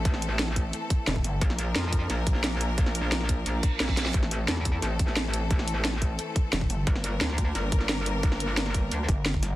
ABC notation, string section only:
X:1
M:4/4
L:1/8
Q:1/4=176
K:Aphr
V:1 name="String section"
[E,A,CA]8 | [F,B,DB]8- | [F,B,DB]8 | [E,A,CA]8- |
[E,A,CA]8 | [G,B,DB]8- | [G,B,DB]8 |]